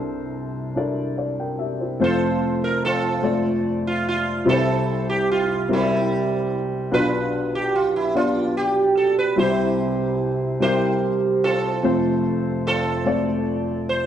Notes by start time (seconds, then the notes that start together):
Already playing: C2 C3 D4 E4 A4 A#4 C5
0.75 D4 E4 A4 A#4 D5
1.18 D5
1.40 A#4 G5
1.59 G4 E5
1.80 E4 C5
2.00 F1 F2 A3 C4 F4 A4 C5
2.04 F4 A4 C5
2.64 A#4
2.85 C4 F4 A4
3.22 A3 C4 F4 A4 D5
3.87 F4
4.08 F4
4.45 C2 C3 G3 C4 E4 G4 B4
4.49 C4 E4 A4
4.53 C5
5.10 G4
5.31 F4
5.69 G3 C4 E4 G4 A#4
5.73 G3 C4 E4
6.91 B1 B2 B3 D4 F4 G4 B4
7.55 G4
7.75 F4
7.96 E4
8.15 B3 D4 F4 G4 D5
8.57 G4
8.97 A4
9.19 B4
9.36 C2 C3 G3 C4 E4 G4 C5
10.60 G3 C4 E4 G4 A#4 C5
11.44 C4 F4 A4
11.83 F1 F2 A3 C4 F4 A4 C5
12.67 C4 F4 A4
13.05 A3 C4 F4 A4 D5
13.89 C5